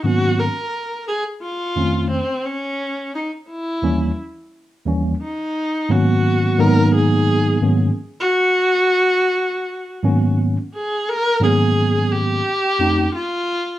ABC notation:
X:1
M:4/4
L:1/16
Q:"Swing 16ths" 1/4=87
K:G#m
V:1 name="Viola"
F2 A4 G2 =F4 =C2 _D2- | _D2 ^D2 E4 z6 D2- | D2 F4 A2 G4- G z2 F- | F12 z2 G2 |
A2 G4 =G6 =F4 |]
V:2 name="Tine electric piano"
[G,,D,F,A,B,C]2 z8 [=F,,_E,=A,=C_D]2 z4 | z6 [D,,E,=G,A,C]2 z4 [D,,E,G,A,C]2 z2 | z2 [G,,D,F,A,B,C]4 [G,,D,F,A,B,D]6 [G,,D,F,A,B,C]2 z2 | z8 z2 [G,,D,F,A,B,C]2 z4 |
z2 [G,,D,F,A,B,C]6 z2 [=F,,=A,=C_D_E]2 z4 |]